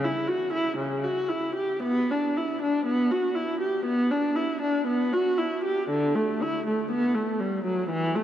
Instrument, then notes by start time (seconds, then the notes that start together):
viola
0.04 E4
0.28 F#4
0.53 E4
0.77 C#3
1.04 F#4
1.29 E4
1.56 G4
1.83 B3
2.11 D4
2.37 E4
2.62 D4
2.86 B3
3.11 F#4
3.35 E4
3.61 G4
3.85 B3
4.11 D4
4.36 E4
4.61 D4
4.87 B3
5.13 F#4
5.38 E4
5.64 G4
5.90 D3
6.15 A3
6.42 E4
6.66 A3
6.91 B3
7.15 A3
7.40 G3
7.65 F#3
7.90 E3
8.16 A3